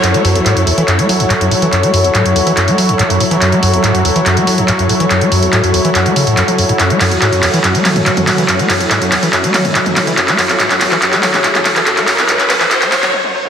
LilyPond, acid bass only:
\new Staff \with { instrumentName = "Acid bass" } { \clef bass \time 4/4 \key fis \minor \tempo 4 = 142 fis,16 a16 fis,16 e,16 gis,16 fis,16 e,16 e16 fis,16 a16 fis16 e,16 gis,16 fis,16 a,16 e16 | fis,16 a16 fis,16 e,16 gis,16 fis,16 e,16 e16 fis,16 a16 fis16 e,16 gis,16 fis,16 a,16 e16 | fis,16 a16 fis,16 e,16 gis,16 fis,16 e,16 e16 fis,16 a16 fis16 e,16 gis,16 fis,16 a,16 e16 | fis,16 a16 fis,16 e,16 gis,16 fis,16 e,16 e16 fis,16 a16 cis16 a,16 fis,16 fis16 fis,16 a,16 |
fis,16 a16 fis,16 e,16 gis,16 fis,16 e,16 e16 fis,16 a16 fis16 e,16 gis,16 fis,16 a,16 e16 | fis,16 a16 fis,16 e,16 gis,16 fis,16 e,16 e16 fis,16 a16 fis16 e,16 gis,16 fis,16 a,16 e16 | fis,16 a16 fis,16 e,16 gis,16 fis,16 e,16 e16 fis,16 a16 fis16 e,16 gis,16 fis,16 a,16 e16 | fis,16 a16 fis,16 e,16 gis,16 fis,16 e,16 e16 fis,16 a16 fis,16 fis16 fis,16 fis,16 fis,16 fis,16 | }